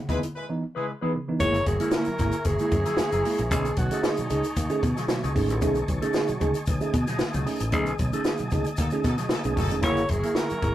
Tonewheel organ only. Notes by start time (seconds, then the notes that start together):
1.42 E5 G#5 A#5 C#6
3.52 D#5 G#5 A5
6.68 D#6
9.82 E5 A#5 C#6